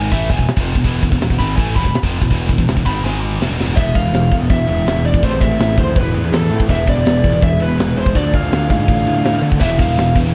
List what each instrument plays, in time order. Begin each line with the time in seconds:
Already playing: picked electric bass G#1, distorted electric guitar G#2 D#3 G#3, lead electric guitar G#5
0.12 picked electric bass A1, distorted electric guitar A2 E3 A3, lead electric guitar E5, kick, open hi-hat
0.30 picked electric bass E1, distorted electric guitar E2 B2, lead electric guitar G#5, kick, open hi-hat
0.39 picked electric bass E1, distorted electric guitar E2 B2, kick
0.47 muted picked electric bass stroke, muted distorted electric guitar stroke, snare, open hi-hat
0.57 picked electric bass F1, distorted electric guitar F2 C3 F3, kick
0.66 open hi-hat
0.75 picked electric bass E1, distorted electric guitar E2 B2, kick
0.84 picked electric bass E1, distorted electric guitar E2 B2 E3, kick, open hi-hat
1.03 picked electric bass E1, distorted electric guitar E2 B2, kick, open hi-hat
1.12 picked electric bass E1, distorted electric guitar E2 B2, kick
1.20 picked electric bass E1, distorted electric guitar E2 B2, snare, open hi-hat
1.30 picked electric bass E1, distorted electric guitar E2 B2, kick
1.39 picked electric bass G#1, distorted electric guitar G#2 D#3 G#3, lead electric guitar B5, kick, open hi-hat
1.57 picked electric bass A1, distorted electric guitar A2 E3 A3, lead electric guitar G#5, kick, open hi-hat
1.75 picked electric bass E1, distorted electric guitar E2 B2, lead electric guitar B5, kick, open hi-hat
1.85 picked electric bass E1, distorted electric guitar E2 B2, kick
1.93 muted picked electric bass stroke, muted distorted electric guitar stroke, snare, open hi-hat
2.03 picked electric bass F1, distorted electric guitar F2 C3 F3, kick
2.13 open hi-hat
2.21 picked electric bass E1, distorted electric guitar E2 B2, kick
2.31 picked electric bass E1, distorted electric guitar E2 B2 E3, kick, open hi-hat
2.49 picked electric bass E1, distorted electric guitar E2 B2, kick, open hi-hat
2.58 picked electric bass E1, distorted electric guitar E2 B2, kick
2.67 picked electric bass E1, distorted electric guitar E2 B2, snare, open hi-hat
2.77 picked electric bass E1, distorted electric guitar E2 B2, kick
2.86 picked electric bass G#1, distorted electric guitar G#2 D#3 G#3, lead electric guitar B5, kick, open hi-hat
3.04 picked electric bass G#1, distorted electric guitar G#2 D#3 G#3, lead electric guitar G#5, snare
3.21 lead electric guitar D6
3.41 picked electric bass F1, distorted electric guitar F2 C3, snare
3.50 picked electric bass E1, distorted electric guitar E2 B2
3.59 picked electric bass F1, distorted electric guitar F2 C3, snare
3.67 picked electric bass E1, distorted electric guitar E2 B2
3.76 picked electric bass E1, distorted electric guitar E2 B2 E3 G#3 B3 E4, string section E3 B3 G#4, lead electric guitar E5, kick, crash
3.87 distorted electric guitar E2 B2
3.95 picked electric bass E1, distorted electric guitar E2 B2, lead electric guitar F5, kick
4.05 distorted electric guitar E2 B2
4.13 picked electric bass E1, distorted electric guitar E2 B2, snare, crash
4.32 picked electric bass E1, distorted electric guitar E2 B2 E3 G#3 B3 E4, kick
4.41 distorted electric guitar E2 B2
4.49 picked electric bass E1, distorted electric guitar E2 B2, lead electric guitar E5, kick, crash
4.68 picked electric bass E1, distorted electric guitar E2 B2
4.77 distorted electric guitar E2 B2
4.86 picked electric bass E1, distorted electric guitar E2 B2, snare, crash
4.96 distorted electric guitar E2 B2
5.05 distorted electric guitar E2 B2, lead electric guitar D5
5.14 distorted electric guitar E2 B2, kick
5.22 picked electric bass A1, distorted electric guitar A2 E3 A3 C4 E4, string section A3 B4, lead electric guitar C5, kick, crash
5.33 distorted electric guitar A2 E3
5.41 distorted electric guitar A2 E3, lead electric guitar E5, kick
5.52 distorted electric guitar A2 E3
5.59 picked electric bass A1, distorted electric guitar A2 E3, snare, crash
5.77 picked electric bass D2, distorted electric guitar A2 E3 A3 C4 E4, lead electric guitar C5, kick
5.87 distorted electric guitar A2 E3
5.96 picked electric bass E1, distorted electric guitar A2 E3, lead electric guitar B4, kick, crash
6.14 picked electric bass E2, distorted electric guitar A2 E3
6.24 distorted electric guitar A2 E3
6.32 picked electric bass E2, distorted electric guitar A2 E3, lead electric guitar A4, snare, crash
6.42 distorted electric guitar A2 E3
6.51 picked electric bass A2, distorted electric guitar A2 E3
6.59 distorted electric guitar A2 E3, kick
6.68 picked electric bass E1, distorted electric guitar E2 B2 E3 G#3 B3 E4, lead electric guitar E5, string section G#5, kick, crash
6.78 distorted electric guitar E2 B2
6.86 picked electric bass E1, distorted electric guitar E2 B2, lead electric guitar D5, kick
6.95 distorted electric guitar E2 B2
7.05 picked electric bass E1, distorted electric guitar E2 B2, snare, crash
7.23 picked electric bass E1, distorted electric guitar E2 B2 E3 G#3 B3 E4, kick
7.32 distorted electric guitar E2 B2
7.41 picked electric bass E1, distorted electric guitar E2 B2, lead electric guitar E5, kick, crash
7.60 picked electric bass E1, distorted electric guitar E2 B2, lead electric guitar B4
7.69 distorted electric guitar E2 B2
7.77 picked electric bass E1, distorted electric guitar E2 B2, snare, crash
7.87 distorted electric guitar E2 B2
7.96 distorted electric guitar E2 B2, lead electric guitar C5
8.06 distorted electric guitar E2 B2, kick
8.15 picked electric bass D2, distorted electric guitar D3 A3 D4 F4, string section D4 A4, lead electric guitar D5, kick, crash
8.24 distorted electric guitar D3 A3
8.34 distorted electric guitar D3 A3, lead electric guitar F5, kick
8.43 distorted electric guitar D3 A3
8.52 picked electric bass D2, distorted electric guitar D3 A3, snare, crash
8.68 picked electric bass G#2, distorted electric guitar D3 A3 D4 F4, lead electric guitar F5, kick
8.79 distorted electric guitar D3 A3
8.88 picked electric bass A1, distorted electric guitar D3 A3, kick, crash
9.06 picked electric bass A2, distorted electric guitar D3 A3
9.17 distorted electric guitar D3 A3
9.24 picked electric bass A2, distorted electric guitar D3 A3, snare, crash
9.35 distorted electric guitar D3 A3
9.42 picked electric bass D3, distorted electric guitar D3 A3
9.52 distorted electric guitar D3 A3, kick
9.59 picked electric bass E1, distorted electric guitar E2 B2 E3 G#3 B3 E4, string section E3 B4, lead electric guitar E5, kick, crash
9.69 distorted electric guitar E2 B2
9.79 picked electric bass E1, distorted electric guitar E2 B2, lead electric guitar F5, kick
9.89 distorted electric guitar E2 B2
9.97 picked electric bass E1, distorted electric guitar E2 B2, snare, crash
10.15 picked electric bass E1, distorted electric guitar E2 B2 E3 G#3 B3 E4, kick
10.26 distorted electric guitar E2 B2